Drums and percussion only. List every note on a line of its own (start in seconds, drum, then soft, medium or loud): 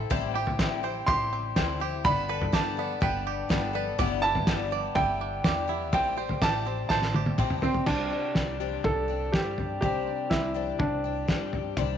0.11 kick loud
0.11 floor tom loud
0.47 floor tom medium
0.59 kick loud
0.59 snare loud
1.08 kick loud
1.08 floor tom loud
1.56 kick loud
1.56 snare loud
2.05 kick medium
2.05 floor tom loud
2.41 floor tom medium
2.53 kick loud
2.53 snare loud
3.02 kick loud
3.02 floor tom loud
3.50 kick loud
3.50 snare loud
3.99 kick loud
3.99 floor tom loud
4.35 floor tom medium
4.47 kick loud
4.47 snare loud
4.95 kick loud
4.95 floor tom loud
5.44 kick loud
5.44 snare loud
5.93 kick loud
5.93 floor tom loud
6.29 floor tom medium
6.42 kick loud
6.42 snare loud
6.90 kick loud
6.90 snare medium
7.02 snare medium
7.14 high tom medium
7.26 high tom medium
7.38 kick loud
7.38 mid tom medium
7.50 mid tom medium
7.62 floor tom medium
7.74 floor tom medium
7.86 kick medium
7.86 floor tom medium
7.86 crash medium
8.35 kick loud
8.35 snare loud
8.84 kick loud
8.84 floor tom loud
9.34 kick medium
9.34 snare loud
9.58 floor tom medium
9.82 kick medium
9.82 floor tom medium
10.31 kick loud
10.31 snare loud
10.80 kick loud
10.80 floor tom loud
11.28 kick medium
11.28 snare loud
11.53 floor tom medium
11.77 kick loud
11.77 floor tom medium